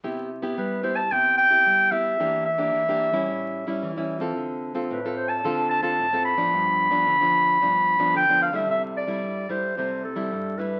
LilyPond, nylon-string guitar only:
\new Staff \with { instrumentName = "Nylon-string guitar" } { \time 4/4 \key c \major \tempo 4 = 111 << { <b e' g'>8 r16 <b e' g'>8. <b e' g'>16 r16 <b e' g'>8. <b e' g'>8. <b e' g'>8 | <bes d' g'>8 r16 <bes d' g'>8 <bes d' g'>8 <g des' e'>4 <g cis' e'>8 <g cis' e'>8 <c' f' a'>16~ | <c' f' a'>8. <c' f' a'>8 <c' f' a'>8. <c' f' a'>8. <c' f' a'>8 <c' f' a'>8 <f b d'>16~ | <f b d'>8. <f b d'>8 <f b d'>8. <f b d'>8. <f b d'>8 <f b d'>8 <g a e'>16~ |
<g a e'>8. <g a e'>8. <g a e'>8 <g a e'>8 r16 <g a e'>8. <g a e'>8 | } \\ { c4 g4 c4 g4 | e4 e4 a,4 e4 | d4 a,4 d4 a,4 | g,4 d4 g,4 d4 |
c4 g,4 c4 g,4 | } >> }